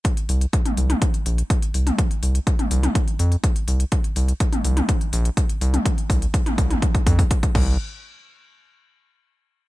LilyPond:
<<
  \new Staff \with { instrumentName = "Analog synth bass" } { \clef bass \time 4/4 \key bes \mixolydian \tempo 4 = 124 r8 c,8 r8 c,8 r8 bes,,8 r8 c,8 | r8 c,8 r8 c,8 r8 f,8 r8 c,8 | r8 c,8 r8 c,8 r8 bes,,8 r8 c,8 | r8 c,8 r8 c,8 r8 f,8 r8 c,8 |
r1 | }
  \new DrumStaff \with { instrumentName = "Drums" } \drummode { \time 4/4 <hh bd>16 hh16 hho16 hh16 <hh bd>16 <hh toml>16 hho16 <hh toml>16 <hh bd>16 hh16 hho16 hh16 <hh bd>16 hh16 hho16 <hh toml>16 | <hh bd>16 hh16 hho16 hh16 <hh bd>16 <hh toml>16 hho16 <hh toml>16 <hh bd>16 hh16 hho16 hho16 <hh bd>16 hh16 hho16 hh16 | <hh bd>16 hh16 hho16 hh16 <hh bd>16 <hh toml>16 hho16 <hh toml>16 <hh bd>16 hh16 hho16 hh16 <hh bd>16 hh16 hho16 <hh toml>16 | <hh bd>16 hh16 <hho bd>16 hh16 <hh bd>16 <hh toml>16 <hho bd>16 <hh toml>16 <hh bd>16 <hh bd>16 <hho bd>16 <hho bd>16 <hh bd>16 <hh bd>16 <cymc bd>8 |
r4 r4 r4 r4 | }
>>